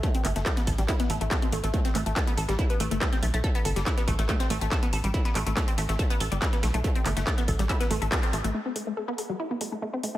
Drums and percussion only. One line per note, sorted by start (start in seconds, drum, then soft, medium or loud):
0.03 kick loud
0.03 closed hi-hat medium
0.15 closed hi-hat medium
0.25 clap medium
0.25 closed hi-hat medium
0.25 open hi-hat loud
0.36 snare soft
0.36 closed hi-hat medium
0.46 kick loud
0.46 snare loud
0.46 clap loud
0.46 closed hi-hat medium
0.57 snare medium
0.57 closed hi-hat medium
0.67 kick medium
0.67 closed hi-hat medium
0.67 open hi-hat loud
0.78 snare medium
0.78 closed hi-hat medium
0.88 kick loud
0.88 clap medium
0.88 closed hi-hat medium
1.00 snare soft
1.00 closed hi-hat medium
1.10 closed hi-hat medium
1.10 open hi-hat loud
1.21 closed hi-hat medium
1.31 kick loud
1.31 snare loud
1.31 clap loud
1.31 closed hi-hat medium
1.42 closed hi-hat soft
1.42 closed hi-hat medium
1.52 closed hi-hat medium
1.52 open hi-hat medium
1.64 closed hi-hat medium
1.74 kick loud
1.74 closed hi-hat medium
1.85 snare medium
1.85 closed hi-hat medium
1.95 clap medium
1.95 closed hi-hat medium
1.95 open hi-hat loud
2.06 closed hi-hat medium
2.16 kick loud
2.16 snare loud
2.16 clap loud
2.16 closed hi-hat medium
2.27 closed hi-hat soft
2.27 closed hi-hat medium
2.37 closed hi-hat medium
2.37 open hi-hat medium
2.49 snare medium
2.49 closed hi-hat medium
2.59 kick loud
2.59 closed hi-hat medium
2.70 closed hi-hat medium
2.80 closed hi-hat medium
2.80 open hi-hat loud
2.91 closed hi-hat medium
3.01 kick loud
3.01 snare loud
3.01 clap loud
3.01 closed hi-hat medium
3.12 snare soft
3.12 closed hi-hat medium
3.23 closed hi-hat medium
3.23 open hi-hat medium
3.34 closed hi-hat medium
3.44 kick loud
3.44 closed hi-hat medium
3.55 closed hi-hat medium
3.65 closed hi-hat medium
3.65 open hi-hat loud
3.76 snare soft
3.76 closed hi-hat medium
3.86 kick loud
3.86 snare loud
3.86 clap loud
3.86 closed hi-hat medium
3.98 snare medium
3.98 closed hi-hat medium
4.08 kick medium
4.08 closed hi-hat medium
4.08 open hi-hat medium
4.19 snare medium
4.19 closed hi-hat medium
4.29 kick loud
4.29 clap medium
4.29 closed hi-hat medium
4.40 snare soft
4.40 closed hi-hat medium
4.50 closed hi-hat medium
4.50 open hi-hat loud
4.61 closed hi-hat medium
4.71 kick loud
4.71 snare loud
4.71 clap loud
4.71 closed hi-hat medium
4.83 closed hi-hat soft
4.83 closed hi-hat medium
4.93 closed hi-hat medium
4.93 open hi-hat medium
5.04 closed hi-hat medium
5.14 kick loud
5.14 closed hi-hat medium
5.25 snare medium
5.25 closed hi-hat medium
5.35 clap medium
5.35 closed hi-hat medium
5.35 open hi-hat loud
5.47 closed hi-hat medium
5.57 kick loud
5.57 snare loud
5.57 clap loud
5.57 closed hi-hat medium
5.68 closed hi-hat medium
5.68 closed hi-hat soft
5.78 closed hi-hat medium
5.78 open hi-hat medium
5.89 snare medium
5.89 closed hi-hat medium
5.99 kick loud
5.99 closed hi-hat medium
6.10 closed hi-hat medium
6.21 closed hi-hat medium
6.21 open hi-hat loud
6.32 closed hi-hat medium
6.42 kick loud
6.42 snare loud
6.42 clap loud
6.42 closed hi-hat medium
6.53 snare soft
6.53 closed hi-hat medium
6.63 snare loud
6.63 closed hi-hat medium
6.63 open hi-hat medium
6.74 closed hi-hat medium
6.84 kick loud
6.84 closed hi-hat medium
6.96 closed hi-hat medium
7.05 clap medium
7.05 closed hi-hat medium
7.05 open hi-hat loud
7.17 snare soft
7.17 closed hi-hat medium
7.27 kick loud
7.27 snare loud
7.27 clap loud
7.27 closed hi-hat medium
7.38 snare medium
7.38 closed hi-hat medium
7.48 kick medium
7.48 closed hi-hat medium
7.48 open hi-hat medium
7.59 snare medium
7.59 closed hi-hat medium
7.69 kick loud
7.69 clap medium
7.69 closed hi-hat medium
7.81 snare soft
7.81 closed hi-hat medium
7.91 closed hi-hat medium
7.91 open hi-hat loud
8.02 closed hi-hat medium
8.12 kick loud
8.12 snare loud
8.12 clap loud
8.12 closed hi-hat medium
8.23 closed hi-hat soft
8.23 closed hi-hat medium
8.33 closed hi-hat medium
8.33 open hi-hat medium
8.44 closed hi-hat medium
8.76 open hi-hat loud
9.18 open hi-hat medium
9.61 open hi-hat loud
10.03 open hi-hat medium